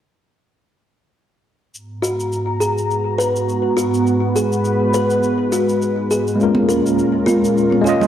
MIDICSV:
0, 0, Header, 1, 5, 480
1, 0, Start_track
1, 0, Tempo, 582524
1, 1435, Time_signature, 4, 2, 24, 8
1, 6651, End_track
2, 0, Start_track
2, 0, Title_t, "Kalimba"
2, 0, Program_c, 0, 108
2, 1667, Note_on_c, 0, 66, 86
2, 1900, Note_off_c, 0, 66, 0
2, 2147, Note_on_c, 0, 68, 64
2, 2294, Note_off_c, 0, 68, 0
2, 2625, Note_on_c, 0, 71, 84
2, 2848, Note_off_c, 0, 71, 0
2, 3105, Note_on_c, 0, 66, 86
2, 3339, Note_off_c, 0, 66, 0
2, 3592, Note_on_c, 0, 68, 66
2, 3736, Note_off_c, 0, 68, 0
2, 4073, Note_on_c, 0, 71, 86
2, 4293, Note_off_c, 0, 71, 0
2, 4552, Note_on_c, 0, 66, 84
2, 4782, Note_off_c, 0, 66, 0
2, 5032, Note_on_c, 0, 68, 69
2, 5176, Note_off_c, 0, 68, 0
2, 5508, Note_on_c, 0, 70, 89
2, 5730, Note_off_c, 0, 70, 0
2, 5983, Note_on_c, 0, 65, 93
2, 6218, Note_off_c, 0, 65, 0
2, 6462, Note_on_c, 0, 68, 63
2, 6611, Note_off_c, 0, 68, 0
2, 6651, End_track
3, 0, Start_track
3, 0, Title_t, "Analog synth pad"
3, 0, Program_c, 1, 89
3, 1427, Note_on_c, 1, 56, 69
3, 1427, Note_on_c, 1, 82, 85
3, 1428, Note_on_c, 1, 59, 74
3, 1431, Note_on_c, 1, 44, 82
3, 1431, Note_on_c, 1, 66, 72
3, 3332, Note_off_c, 1, 82, 0
3, 3342, Note_on_c, 1, 71, 90
3, 5238, Note_off_c, 1, 59, 0
3, 5240, Note_off_c, 1, 44, 0
3, 5240, Note_off_c, 1, 66, 0
3, 5249, Note_off_c, 1, 71, 0
3, 5270, Note_on_c, 1, 65, 76
3, 5271, Note_on_c, 1, 46, 83
3, 5273, Note_on_c, 1, 61, 73
3, 5273, Note_on_c, 1, 70, 92
3, 6651, Note_off_c, 1, 46, 0
3, 6651, Note_off_c, 1, 56, 0
3, 6651, Note_off_c, 1, 61, 0
3, 6651, Note_off_c, 1, 65, 0
3, 6651, Note_off_c, 1, 70, 0
3, 6651, End_track
4, 0, Start_track
4, 0, Title_t, "Tine electric piano"
4, 0, Program_c, 2, 4
4, 5236, Note_on_c, 2, 56, 65
4, 5250, Note_on_c, 2, 58, 58
4, 5267, Note_on_c, 2, 61, 55
4, 5281, Note_on_c, 2, 65, 56
4, 5298, Note_on_c, 2, 70, 73
4, 5445, Control_c, 2, 64, 127
4, 6428, Note_off_c, 2, 56, 0
4, 6437, Note_off_c, 2, 58, 0
4, 6438, Note_on_c, 2, 56, 84
4, 6445, Note_off_c, 2, 61, 0
4, 6452, Note_off_c, 2, 65, 0
4, 6453, Note_on_c, 2, 58, 75
4, 6461, Note_off_c, 2, 70, 0
4, 6467, Note_on_c, 2, 61, 79
4, 6485, Note_on_c, 2, 65, 84
4, 6501, Note_on_c, 2, 75, 97
4, 6651, Note_off_c, 2, 56, 0
4, 6651, Note_off_c, 2, 58, 0
4, 6651, Note_off_c, 2, 61, 0
4, 6651, Note_off_c, 2, 65, 0
4, 6651, Note_off_c, 2, 75, 0
4, 6651, End_track
5, 0, Start_track
5, 0, Title_t, "Drums"
5, 1438, Note_on_c, 9, 82, 29
5, 1521, Note_off_c, 9, 82, 0
5, 1678, Note_on_c, 9, 82, 68
5, 1760, Note_off_c, 9, 82, 0
5, 1812, Note_on_c, 9, 82, 38
5, 1895, Note_off_c, 9, 82, 0
5, 1916, Note_on_c, 9, 82, 30
5, 1999, Note_off_c, 9, 82, 0
5, 2153, Note_on_c, 9, 82, 64
5, 2236, Note_off_c, 9, 82, 0
5, 2291, Note_on_c, 9, 82, 39
5, 2374, Note_off_c, 9, 82, 0
5, 2396, Note_on_c, 9, 82, 29
5, 2479, Note_off_c, 9, 82, 0
5, 2638, Note_on_c, 9, 82, 65
5, 2720, Note_off_c, 9, 82, 0
5, 2770, Note_on_c, 9, 82, 38
5, 2852, Note_off_c, 9, 82, 0
5, 2876, Note_on_c, 9, 82, 30
5, 2958, Note_off_c, 9, 82, 0
5, 3115, Note_on_c, 9, 82, 66
5, 3197, Note_off_c, 9, 82, 0
5, 3248, Note_on_c, 9, 82, 37
5, 3331, Note_off_c, 9, 82, 0
5, 3354, Note_on_c, 9, 82, 28
5, 3436, Note_off_c, 9, 82, 0
5, 3595, Note_on_c, 9, 82, 66
5, 3678, Note_off_c, 9, 82, 0
5, 3729, Note_on_c, 9, 82, 42
5, 3811, Note_off_c, 9, 82, 0
5, 3830, Note_on_c, 9, 82, 31
5, 3912, Note_off_c, 9, 82, 0
5, 4069, Note_on_c, 9, 82, 66
5, 4152, Note_off_c, 9, 82, 0
5, 4206, Note_on_c, 9, 82, 40
5, 4289, Note_off_c, 9, 82, 0
5, 4312, Note_on_c, 9, 82, 32
5, 4395, Note_off_c, 9, 82, 0
5, 4553, Note_on_c, 9, 82, 71
5, 4636, Note_off_c, 9, 82, 0
5, 4688, Note_on_c, 9, 82, 41
5, 4771, Note_off_c, 9, 82, 0
5, 4795, Note_on_c, 9, 82, 30
5, 4877, Note_off_c, 9, 82, 0
5, 5034, Note_on_c, 9, 82, 72
5, 5117, Note_off_c, 9, 82, 0
5, 5168, Note_on_c, 9, 82, 39
5, 5251, Note_off_c, 9, 82, 0
5, 5276, Note_on_c, 9, 82, 31
5, 5358, Note_off_c, 9, 82, 0
5, 5393, Note_on_c, 9, 63, 83
5, 5476, Note_off_c, 9, 63, 0
5, 5515, Note_on_c, 9, 82, 69
5, 5598, Note_off_c, 9, 82, 0
5, 5653, Note_on_c, 9, 82, 42
5, 5735, Note_off_c, 9, 82, 0
5, 5756, Note_on_c, 9, 82, 31
5, 5839, Note_off_c, 9, 82, 0
5, 5990, Note_on_c, 9, 63, 72
5, 5995, Note_on_c, 9, 82, 65
5, 6073, Note_off_c, 9, 63, 0
5, 6077, Note_off_c, 9, 82, 0
5, 6133, Note_on_c, 9, 82, 44
5, 6215, Note_off_c, 9, 82, 0
5, 6241, Note_on_c, 9, 82, 31
5, 6323, Note_off_c, 9, 82, 0
5, 6364, Note_on_c, 9, 63, 58
5, 6446, Note_off_c, 9, 63, 0
5, 6479, Note_on_c, 9, 82, 73
5, 6561, Note_off_c, 9, 82, 0
5, 6604, Note_on_c, 9, 64, 81
5, 6614, Note_on_c, 9, 82, 42
5, 6651, Note_off_c, 9, 64, 0
5, 6651, Note_off_c, 9, 82, 0
5, 6651, End_track
0, 0, End_of_file